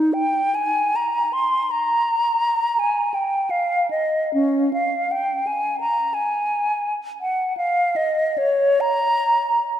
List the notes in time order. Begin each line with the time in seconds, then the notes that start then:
Already playing: D#4
0.13 G5
0.55 G#5
0.96 A#5
1.33 C6
1.71 A#5
2.79 G#5
3.14 G5
3.50 F5
3.91 D#5
4.34 C#4
4.73 F5
5.11 G5
5.47 G#5
5.80 A#5
6.14 G#5
7.21 F#5
7.57 F5
7.96 D#5
8.38 C#5
8.81 A#5